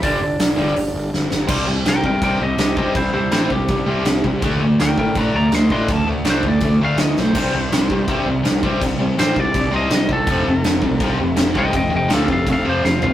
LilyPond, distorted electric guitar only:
\new Staff \with { instrumentName = "Distorted electric guitar" } { \clef bass \time 4/4 \key d \dorian \tempo 4 = 164 <g, d g>8 r4 <g, d g>8 r2 | <c g c'>8 <c g>8 <c g>8 <c g>8 <c g c'>8 <c g>8 <c g>8 <c g c'>8 | <c g>8 <c g>8 <c g c'>8 <c g>8 <c g>8 <c g c'>8 <c g>8 <c g>8 | <d a d'>8 <d a>8 <d a>8 <d a>8 <d a d'>8 <d a>8 <d a>8 <d a d'>8 |
<d a>8 <d a>8 <d a d'>8 <d a>8 <d a>8 <d a d'>8 <d a>8 <d a>8 | <c g c'>8 <c g>8 <c g>8 <c g>8 <c g c'>8 <c g>8 <c g>8 <c g c'>8 | <c g>8 <c g>8 <c g c'>8 <c g>8 <c g>8 <c g c'>8 <c g>8 <c g>8 | <f, c f>8 <f, c>8 <f, c>8 <f, c>8 <f, c f>8 <f, c>8 <f, c>8 <f, c f>8 |
<f, c>8 <f, c>8 <f, c f>8 <f, c>8 <f, c>8 <f, c f>8 <f, c>8 <f, c>8 | }